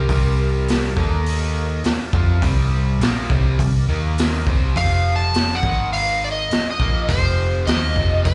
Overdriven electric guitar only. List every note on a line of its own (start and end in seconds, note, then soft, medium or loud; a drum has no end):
0.10 0.96 C3 medium
0.10 0.97 G3 medium
0.10 0.97 C4 loud
0.97 1.84 D#3 medium
0.97 1.84 A#3 medium
0.97 1.85 D#4 loud
1.85 muted overdriven electric guitar stroke medium
2.13 2.42 F3 medium
2.13 2.42 C4 medium
2.13 2.42 F4 medium
2.42 3.00 C3 medium
2.42 3.00 G3 loud
2.42 3.01 C4 medium
3.01 3.29 A#2 medium
3.01 3.30 F3 medium
3.01 3.30 A#3 medium
3.30 3.59 C3 medium
3.30 3.59 G3 loud
3.30 3.59 C4 medium
3.60 3.83 C3 medium
3.60 3.83 G3 medium
3.89 4.46 D#3 medium
3.89 4.46 A#3 medium
3.89 4.47 D#4 medium
4.48 4.76 C3 medium
4.48 4.76 G3 medium
4.48 4.76 C4 loud
4.77 5.63 F2 medium
4.77 5.63 C3 medium
4.77 5.63 F3 loud
5.65 6.51 G#2 medium
5.65 6.51 D#3 medium
5.65 6.51 G#3 loud
6.53 muted overdriven electric guitar stroke medium
6.81 7.09 A#2 medium
6.81 7.09 F3 medium
6.81 7.09 A#3 medium
7.09 7.67 F2 medium
7.09 7.67 C3 loud
7.09 7.68 F3 medium
7.68 7.96 D#3 medium
7.68 7.97 A#3 medium
7.68 7.97 D#4 medium
7.97 8.25 F2 medium
7.97 8.26 C3 loud
7.97 8.26 F3 loud
8.27 8.34 F2 medium
8.27 8.34 C3 medium